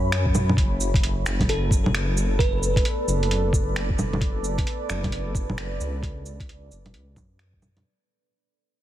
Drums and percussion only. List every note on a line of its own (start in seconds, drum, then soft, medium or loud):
0.12 finger snap loud
0.12 closed hi-hat medium
0.26 kick medium
0.35 low bongo soft
0.35 cabasa medium
0.49 low bongo medium
0.57 kick loud
0.57 closed hi-hat medium
0.81 cabasa medium
0.94 kick loud
0.94 closed hi-hat medium
1.03 closed hi-hat medium
1.26 finger snap loud
1.26 cabasa medium
1.40 kick medium
1.40 closed hi-hat soft
1.40 low bongo soft
1.49 closed hi-hat medium
1.71 kick loud
1.71 cabasa medium
1.86 low bongo medium
1.95 finger snap loud
1.95 closed hi-hat medium
2.17 cabasa medium
2.39 kick loud
2.39 closed hi-hat medium
2.63 cabasa medium
2.76 kick loud
2.76 closed hi-hat medium
2.85 closed hi-hat medium
3.08 cabasa medium
3.23 closed hi-hat soft
3.31 closed hi-hat medium
3.53 kick loud
3.53 cabasa medium
3.76 finger snap loud
3.76 closed hi-hat medium
3.90 kick medium
3.99 low bongo medium
3.99 cabasa medium
4.13 low bongo medium
4.21 kick loud
4.21 closed hi-hat medium
4.44 cabasa medium
4.58 kick loud
4.58 closed hi-hat medium
4.67 closed hi-hat medium
4.90 finger snap loud
4.90 cabasa medium
5.04 kick medium
5.04 closed hi-hat soft
5.04 low bongo soft
5.12 closed hi-hat medium
5.35 kick loud
5.35 cabasa medium
5.50 low bongo medium
5.58 finger snap loud
5.58 closed hi-hat medium
5.81 cabasa medium
6.03 kick loud
6.03 closed hi-hat medium
6.26 cabasa medium
6.40 kick loud
6.40 closed hi-hat medium
6.49 closed hi-hat medium
6.72 cabasa medium
6.86 closed hi-hat soft
6.86 low bongo soft
6.94 closed hi-hat medium
7.16 kick loud
7.16 low bongo medium
7.16 cabasa medium
7.39 finger snap loud
7.39 closed hi-hat medium
7.53 kick medium
7.62 low bongo medium
7.62 cabasa medium
7.77 closed hi-hat soft
7.77 low bongo medium